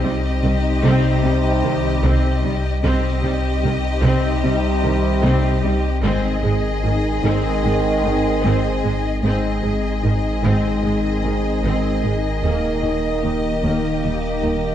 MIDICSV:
0, 0, Header, 1, 11, 480
1, 0, Start_track
1, 0, Tempo, 800000
1, 1702, Time_signature, 4, 2, 24, 8
1, 8849, End_track
2, 0, Start_track
2, 0, Title_t, "Violin section"
2, 0, Program_c, 0, 48
2, 0, Note_on_c, 0, 75, 78
2, 1679, Note_off_c, 0, 75, 0
2, 1702, Note_on_c, 0, 75, 82
2, 3598, Note_off_c, 0, 75, 0
2, 3625, Note_on_c, 0, 75, 76
2, 5519, Note_off_c, 0, 75, 0
2, 5543, Note_on_c, 0, 75, 70
2, 8849, Note_off_c, 0, 75, 0
2, 8849, End_track
3, 0, Start_track
3, 0, Title_t, "Violin section"
3, 0, Program_c, 1, 48
3, 0, Note_on_c, 1, 67, 65
3, 1694, Note_off_c, 1, 67, 0
3, 1701, Note_on_c, 1, 67, 71
3, 3597, Note_off_c, 1, 67, 0
3, 3623, Note_on_c, 1, 68, 71
3, 5518, Note_off_c, 1, 68, 0
3, 5543, Note_on_c, 1, 68, 57
3, 7918, Note_off_c, 1, 68, 0
3, 7939, Note_on_c, 1, 67, 49
3, 8849, Note_off_c, 1, 67, 0
3, 8849, End_track
4, 0, Start_track
4, 0, Title_t, "Analog synth pad"
4, 0, Program_c, 2, 89
4, 0, Note_on_c, 2, 55, 84
4, 0, Note_on_c, 2, 60, 84
4, 0, Note_on_c, 2, 63, 83
4, 0, Note_on_c, 2, 72, 79
4, 1680, Note_off_c, 2, 60, 0
4, 1681, Note_off_c, 2, 72, 0
4, 1695, Note_off_c, 2, 55, 0
4, 1699, Note_off_c, 2, 63, 0
4, 1702, Note_on_c, 2, 55, 80
4, 1703, Note_on_c, 2, 72, 79
4, 1705, Note_on_c, 2, 60, 82
4, 1707, Note_on_c, 2, 63, 82
4, 3598, Note_off_c, 2, 55, 0
4, 3598, Note_off_c, 2, 72, 0
4, 3599, Note_off_c, 2, 60, 0
4, 3600, Note_off_c, 2, 63, 0
4, 3624, Note_on_c, 2, 56, 78
4, 3624, Note_on_c, 2, 63, 81
4, 3625, Note_on_c, 2, 60, 78
4, 3626, Note_on_c, 2, 75, 78
4, 5519, Note_off_c, 2, 60, 0
4, 5519, Note_off_c, 2, 63, 0
4, 5537, Note_off_c, 2, 56, 0
4, 5538, Note_off_c, 2, 75, 0
4, 5543, Note_on_c, 2, 60, 70
4, 5544, Note_on_c, 2, 56, 74
4, 5545, Note_on_c, 2, 75, 69
4, 5546, Note_on_c, 2, 63, 72
4, 7438, Note_off_c, 2, 60, 0
4, 7439, Note_off_c, 2, 56, 0
4, 7467, Note_on_c, 2, 51, 67
4, 7469, Note_on_c, 2, 58, 70
4, 8849, Note_off_c, 2, 51, 0
4, 8849, Note_off_c, 2, 58, 0
4, 8849, Note_off_c, 2, 63, 0
4, 8849, Note_off_c, 2, 75, 0
4, 8849, End_track
5, 0, Start_track
5, 0, Title_t, "French horn section"
5, 0, Program_c, 3, 60
5, 0, Note_on_c, 3, 60, 86
5, 0, Note_on_c, 3, 63, 84
5, 1598, Note_off_c, 3, 60, 0
5, 1598, Note_off_c, 3, 63, 0
5, 1700, Note_on_c, 3, 63, 90
5, 1701, Note_on_c, 3, 60, 96
5, 3596, Note_off_c, 3, 63, 0
5, 3597, Note_off_c, 3, 60, 0
5, 3620, Note_on_c, 3, 63, 83
5, 3623, Note_on_c, 3, 60, 82
5, 5517, Note_off_c, 3, 63, 0
5, 5518, Note_off_c, 3, 60, 0
5, 5543, Note_on_c, 3, 60, 70
5, 5543, Note_on_c, 3, 63, 75
5, 7361, Note_off_c, 3, 60, 0
5, 7463, Note_on_c, 3, 58, 69
5, 8849, Note_off_c, 3, 58, 0
5, 8849, Note_off_c, 3, 63, 0
5, 8849, End_track
6, 0, Start_track
6, 0, Title_t, "Synth pluck"
6, 0, Program_c, 4, 84
6, 25, Note_on_c, 4, 60, 70
6, 168, Note_off_c, 4, 60, 0
6, 263, Note_on_c, 4, 55, 65
6, 406, Note_off_c, 4, 55, 0
6, 501, Note_on_c, 4, 48, 90
6, 645, Note_off_c, 4, 48, 0
6, 742, Note_on_c, 4, 55, 70
6, 886, Note_off_c, 4, 55, 0
6, 984, Note_on_c, 4, 51, 72
6, 1127, Note_off_c, 4, 51, 0
6, 1222, Note_on_c, 4, 48, 91
6, 1366, Note_off_c, 4, 48, 0
6, 1464, Note_on_c, 4, 55, 69
6, 1607, Note_off_c, 4, 55, 0
6, 1702, Note_on_c, 4, 48, 85
6, 1846, Note_off_c, 4, 48, 0
6, 1940, Note_on_c, 4, 60, 72
6, 2085, Note_off_c, 4, 60, 0
6, 2180, Note_on_c, 4, 55, 63
6, 2325, Note_off_c, 4, 55, 0
6, 2419, Note_on_c, 4, 48, 91
6, 2564, Note_off_c, 4, 48, 0
6, 2658, Note_on_c, 4, 55, 71
6, 2803, Note_off_c, 4, 55, 0
6, 2901, Note_on_c, 4, 51, 69
6, 3045, Note_off_c, 4, 51, 0
6, 3139, Note_on_c, 4, 48, 88
6, 3284, Note_off_c, 4, 48, 0
6, 3380, Note_on_c, 4, 55, 69
6, 3524, Note_off_c, 4, 55, 0
6, 3621, Note_on_c, 4, 56, 85
6, 3765, Note_off_c, 4, 56, 0
6, 3863, Note_on_c, 4, 68, 70
6, 4006, Note_off_c, 4, 68, 0
6, 4101, Note_on_c, 4, 63, 65
6, 4245, Note_off_c, 4, 63, 0
6, 4341, Note_on_c, 4, 56, 88
6, 4485, Note_off_c, 4, 56, 0
6, 4580, Note_on_c, 4, 63, 70
6, 4724, Note_off_c, 4, 63, 0
6, 4824, Note_on_c, 4, 60, 64
6, 4967, Note_off_c, 4, 60, 0
6, 5062, Note_on_c, 4, 56, 84
6, 5206, Note_off_c, 4, 56, 0
6, 5304, Note_on_c, 4, 63, 66
6, 5447, Note_off_c, 4, 63, 0
6, 5541, Note_on_c, 4, 56, 78
6, 5685, Note_off_c, 4, 56, 0
6, 5782, Note_on_c, 4, 68, 62
6, 5926, Note_off_c, 4, 68, 0
6, 6021, Note_on_c, 4, 63, 60
6, 6165, Note_off_c, 4, 63, 0
6, 6260, Note_on_c, 4, 56, 81
6, 6405, Note_off_c, 4, 56, 0
6, 6496, Note_on_c, 4, 63, 62
6, 6642, Note_off_c, 4, 63, 0
6, 6739, Note_on_c, 4, 60, 65
6, 6884, Note_off_c, 4, 60, 0
6, 6978, Note_on_c, 4, 56, 87
6, 7123, Note_off_c, 4, 56, 0
6, 7219, Note_on_c, 4, 63, 57
6, 7364, Note_off_c, 4, 63, 0
6, 7459, Note_on_c, 4, 51, 79
6, 7603, Note_off_c, 4, 51, 0
6, 7701, Note_on_c, 4, 63, 63
6, 7845, Note_off_c, 4, 63, 0
6, 7939, Note_on_c, 4, 58, 55
6, 8084, Note_off_c, 4, 58, 0
6, 8181, Note_on_c, 4, 51, 75
6, 8325, Note_off_c, 4, 51, 0
6, 8419, Note_on_c, 4, 58, 55
6, 8564, Note_off_c, 4, 58, 0
6, 8661, Note_on_c, 4, 55, 56
6, 8805, Note_off_c, 4, 55, 0
6, 8849, End_track
7, 0, Start_track
7, 0, Title_t, "Viola section"
7, 0, Program_c, 5, 48
7, 24, Note_on_c, 5, 55, 61
7, 72, Note_off_c, 5, 55, 0
7, 261, Note_on_c, 5, 51, 55
7, 309, Note_off_c, 5, 51, 0
7, 502, Note_on_c, 5, 60, 94
7, 725, Note_off_c, 5, 60, 0
7, 746, Note_on_c, 5, 55, 70
7, 794, Note_off_c, 5, 55, 0
7, 984, Note_on_c, 5, 51, 72
7, 1032, Note_off_c, 5, 51, 0
7, 1224, Note_on_c, 5, 60, 80
7, 1446, Note_off_c, 5, 60, 0
7, 1461, Note_on_c, 5, 55, 75
7, 1509, Note_off_c, 5, 55, 0
7, 1702, Note_on_c, 5, 60, 89
7, 1925, Note_off_c, 5, 60, 0
7, 1943, Note_on_c, 5, 55, 69
7, 1991, Note_off_c, 5, 55, 0
7, 2185, Note_on_c, 5, 51, 60
7, 2233, Note_off_c, 5, 51, 0
7, 2420, Note_on_c, 5, 60, 89
7, 2644, Note_off_c, 5, 60, 0
7, 2664, Note_on_c, 5, 55, 63
7, 2712, Note_off_c, 5, 55, 0
7, 2901, Note_on_c, 5, 51, 67
7, 2949, Note_off_c, 5, 51, 0
7, 3140, Note_on_c, 5, 60, 90
7, 3364, Note_off_c, 5, 60, 0
7, 3379, Note_on_c, 5, 55, 68
7, 3427, Note_off_c, 5, 55, 0
7, 3620, Note_on_c, 5, 60, 89
7, 3844, Note_off_c, 5, 60, 0
7, 3858, Note_on_c, 5, 56, 59
7, 3906, Note_off_c, 5, 56, 0
7, 4102, Note_on_c, 5, 51, 59
7, 4150, Note_off_c, 5, 51, 0
7, 4342, Note_on_c, 5, 60, 81
7, 4565, Note_off_c, 5, 60, 0
7, 4584, Note_on_c, 5, 56, 67
7, 4632, Note_off_c, 5, 56, 0
7, 4821, Note_on_c, 5, 51, 62
7, 4869, Note_off_c, 5, 51, 0
7, 5061, Note_on_c, 5, 60, 76
7, 5284, Note_off_c, 5, 60, 0
7, 5300, Note_on_c, 5, 56, 65
7, 5348, Note_off_c, 5, 56, 0
7, 5541, Note_on_c, 5, 60, 72
7, 5764, Note_off_c, 5, 60, 0
7, 5781, Note_on_c, 5, 56, 47
7, 5829, Note_off_c, 5, 56, 0
7, 6022, Note_on_c, 5, 51, 51
7, 6070, Note_off_c, 5, 51, 0
7, 6262, Note_on_c, 5, 60, 77
7, 6485, Note_off_c, 5, 60, 0
7, 6501, Note_on_c, 5, 56, 53
7, 6549, Note_off_c, 5, 56, 0
7, 6744, Note_on_c, 5, 51, 55
7, 6792, Note_off_c, 5, 51, 0
7, 6984, Note_on_c, 5, 60, 65
7, 7206, Note_off_c, 5, 60, 0
7, 7227, Note_on_c, 5, 56, 55
7, 7275, Note_off_c, 5, 56, 0
7, 7465, Note_on_c, 5, 58, 68
7, 7687, Note_off_c, 5, 58, 0
7, 7704, Note_on_c, 5, 58, 39
7, 7752, Note_off_c, 5, 58, 0
7, 7943, Note_on_c, 5, 51, 43
7, 7991, Note_off_c, 5, 51, 0
7, 8183, Note_on_c, 5, 58, 55
7, 8405, Note_off_c, 5, 58, 0
7, 8422, Note_on_c, 5, 55, 41
7, 8470, Note_off_c, 5, 55, 0
7, 8660, Note_on_c, 5, 51, 39
7, 8708, Note_off_c, 5, 51, 0
7, 8849, End_track
8, 0, Start_track
8, 0, Title_t, "Trombone section"
8, 0, Program_c, 6, 61
8, 0, Note_on_c, 6, 48, 91
8, 0, Note_on_c, 6, 55, 93
8, 1604, Note_off_c, 6, 48, 0
8, 1604, Note_off_c, 6, 55, 0
8, 1706, Note_on_c, 6, 48, 98
8, 1706, Note_on_c, 6, 55, 99
8, 3600, Note_off_c, 6, 48, 0
8, 3600, Note_off_c, 6, 55, 0
8, 3619, Note_on_c, 6, 51, 93
8, 3621, Note_on_c, 6, 56, 94
8, 5516, Note_off_c, 6, 51, 0
8, 5517, Note_off_c, 6, 56, 0
8, 5543, Note_on_c, 6, 51, 81
8, 5543, Note_on_c, 6, 56, 80
8, 7366, Note_off_c, 6, 56, 0
8, 7468, Note_on_c, 6, 58, 71
8, 8849, Note_off_c, 6, 51, 0
8, 8849, Note_off_c, 6, 58, 0
8, 8849, End_track
9, 0, Start_track
9, 0, Title_t, "Cello section"
9, 0, Program_c, 7, 48
9, 25, Note_on_c, 7, 48, 62
9, 73, Note_off_c, 7, 48, 0
9, 261, Note_on_c, 7, 48, 59
9, 309, Note_off_c, 7, 48, 0
9, 502, Note_on_c, 7, 48, 88
9, 550, Note_off_c, 7, 48, 0
9, 740, Note_on_c, 7, 48, 66
9, 788, Note_off_c, 7, 48, 0
9, 982, Note_on_c, 7, 48, 58
9, 1030, Note_off_c, 7, 48, 0
9, 1221, Note_on_c, 7, 48, 89
9, 1269, Note_off_c, 7, 48, 0
9, 1463, Note_on_c, 7, 48, 67
9, 1511, Note_off_c, 7, 48, 0
9, 1701, Note_on_c, 7, 48, 82
9, 1749, Note_off_c, 7, 48, 0
9, 1943, Note_on_c, 7, 48, 62
9, 1991, Note_off_c, 7, 48, 0
9, 2183, Note_on_c, 7, 48, 67
9, 2231, Note_off_c, 7, 48, 0
9, 2420, Note_on_c, 7, 48, 86
9, 2468, Note_off_c, 7, 48, 0
9, 2664, Note_on_c, 7, 48, 65
9, 2712, Note_off_c, 7, 48, 0
9, 2906, Note_on_c, 7, 48, 63
9, 2954, Note_off_c, 7, 48, 0
9, 3144, Note_on_c, 7, 48, 87
9, 3192, Note_off_c, 7, 48, 0
9, 3385, Note_on_c, 7, 48, 66
9, 3433, Note_off_c, 7, 48, 0
9, 3623, Note_on_c, 7, 44, 82
9, 3671, Note_off_c, 7, 44, 0
9, 3864, Note_on_c, 7, 44, 62
9, 3912, Note_off_c, 7, 44, 0
9, 4102, Note_on_c, 7, 44, 57
9, 4150, Note_off_c, 7, 44, 0
9, 4343, Note_on_c, 7, 44, 84
9, 4391, Note_off_c, 7, 44, 0
9, 4584, Note_on_c, 7, 44, 57
9, 4632, Note_off_c, 7, 44, 0
9, 4822, Note_on_c, 7, 44, 54
9, 4870, Note_off_c, 7, 44, 0
9, 5063, Note_on_c, 7, 44, 72
9, 5111, Note_off_c, 7, 44, 0
9, 5304, Note_on_c, 7, 44, 57
9, 5352, Note_off_c, 7, 44, 0
9, 5541, Note_on_c, 7, 44, 68
9, 5589, Note_off_c, 7, 44, 0
9, 5784, Note_on_c, 7, 44, 54
9, 5832, Note_off_c, 7, 44, 0
9, 6021, Note_on_c, 7, 44, 55
9, 6069, Note_off_c, 7, 44, 0
9, 6259, Note_on_c, 7, 44, 74
9, 6307, Note_off_c, 7, 44, 0
9, 6505, Note_on_c, 7, 44, 52
9, 6553, Note_off_c, 7, 44, 0
9, 6742, Note_on_c, 7, 44, 46
9, 6790, Note_off_c, 7, 44, 0
9, 6983, Note_on_c, 7, 44, 66
9, 7031, Note_off_c, 7, 44, 0
9, 7221, Note_on_c, 7, 44, 50
9, 7269, Note_off_c, 7, 44, 0
9, 7461, Note_on_c, 7, 39, 62
9, 7509, Note_off_c, 7, 39, 0
9, 7702, Note_on_c, 7, 39, 40
9, 7750, Note_off_c, 7, 39, 0
9, 7940, Note_on_c, 7, 39, 44
9, 7988, Note_off_c, 7, 39, 0
9, 8180, Note_on_c, 7, 39, 62
9, 8228, Note_off_c, 7, 39, 0
9, 8422, Note_on_c, 7, 39, 37
9, 8470, Note_off_c, 7, 39, 0
9, 8662, Note_on_c, 7, 39, 39
9, 8710, Note_off_c, 7, 39, 0
9, 8849, End_track
10, 0, Start_track
10, 0, Title_t, "Double bass section"
10, 0, Program_c, 8, 48
10, 25, Note_on_c, 8, 36, 59
10, 73, Note_off_c, 8, 36, 0
10, 265, Note_on_c, 8, 36, 63
10, 313, Note_off_c, 8, 36, 0
10, 501, Note_on_c, 8, 36, 87
10, 549, Note_off_c, 8, 36, 0
10, 740, Note_on_c, 8, 36, 61
10, 788, Note_off_c, 8, 36, 0
10, 982, Note_on_c, 8, 36, 64
10, 1030, Note_off_c, 8, 36, 0
10, 1221, Note_on_c, 8, 36, 91
10, 1269, Note_off_c, 8, 36, 0
10, 1464, Note_on_c, 8, 36, 60
10, 1512, Note_off_c, 8, 36, 0
10, 1703, Note_on_c, 8, 36, 88
10, 1751, Note_off_c, 8, 36, 0
10, 1941, Note_on_c, 8, 36, 62
10, 1989, Note_off_c, 8, 36, 0
10, 2182, Note_on_c, 8, 36, 64
10, 2231, Note_off_c, 8, 36, 0
10, 2419, Note_on_c, 8, 36, 90
10, 2468, Note_off_c, 8, 36, 0
10, 2661, Note_on_c, 8, 36, 62
10, 2709, Note_off_c, 8, 36, 0
10, 2902, Note_on_c, 8, 36, 69
10, 2950, Note_off_c, 8, 36, 0
10, 3142, Note_on_c, 8, 36, 92
10, 3190, Note_off_c, 8, 36, 0
10, 3380, Note_on_c, 8, 36, 62
10, 3428, Note_off_c, 8, 36, 0
10, 3621, Note_on_c, 8, 32, 83
10, 3669, Note_off_c, 8, 32, 0
10, 3859, Note_on_c, 8, 32, 59
10, 3907, Note_off_c, 8, 32, 0
10, 4100, Note_on_c, 8, 32, 60
10, 4148, Note_off_c, 8, 32, 0
10, 4338, Note_on_c, 8, 32, 80
10, 4386, Note_off_c, 8, 32, 0
10, 4580, Note_on_c, 8, 32, 54
10, 4628, Note_off_c, 8, 32, 0
10, 4821, Note_on_c, 8, 32, 61
10, 4869, Note_off_c, 8, 32, 0
10, 5060, Note_on_c, 8, 32, 80
10, 5108, Note_off_c, 8, 32, 0
10, 5303, Note_on_c, 8, 32, 55
10, 5351, Note_off_c, 8, 32, 0
10, 5542, Note_on_c, 8, 32, 69
10, 5590, Note_off_c, 8, 32, 0
10, 5780, Note_on_c, 8, 32, 50
10, 5828, Note_off_c, 8, 32, 0
10, 6023, Note_on_c, 8, 32, 56
10, 6071, Note_off_c, 8, 32, 0
10, 6262, Note_on_c, 8, 32, 67
10, 6310, Note_off_c, 8, 32, 0
10, 6502, Note_on_c, 8, 32, 47
10, 6550, Note_off_c, 8, 32, 0
10, 6741, Note_on_c, 8, 32, 49
10, 6789, Note_off_c, 8, 32, 0
10, 6982, Note_on_c, 8, 32, 70
10, 7030, Note_off_c, 8, 32, 0
10, 7222, Note_on_c, 8, 32, 48
10, 7270, Note_off_c, 8, 32, 0
10, 7459, Note_on_c, 8, 39, 63
10, 7507, Note_off_c, 8, 39, 0
10, 7700, Note_on_c, 8, 39, 40
10, 7748, Note_off_c, 8, 39, 0
10, 7944, Note_on_c, 8, 39, 46
10, 7992, Note_off_c, 8, 39, 0
10, 8182, Note_on_c, 8, 39, 58
10, 8230, Note_off_c, 8, 39, 0
10, 8421, Note_on_c, 8, 39, 41
10, 8469, Note_off_c, 8, 39, 0
10, 8661, Note_on_c, 8, 39, 41
10, 8709, Note_off_c, 8, 39, 0
10, 8849, End_track
11, 0, Start_track
11, 0, Title_t, "Sub bass"
11, 0, Program_c, 10, 38
11, 0, Note_on_c, 10, 36, 71
11, 1699, Note_off_c, 10, 36, 0
11, 1703, Note_on_c, 10, 36, 67
11, 3620, Note_on_c, 10, 32, 65
11, 3629, Note_off_c, 10, 36, 0
11, 5537, Note_off_c, 10, 32, 0
11, 5541, Note_on_c, 10, 32, 65
11, 7464, Note_on_c, 10, 27, 57
11, 7473, Note_off_c, 10, 32, 0
11, 8849, Note_off_c, 10, 27, 0
11, 8849, End_track
0, 0, End_of_file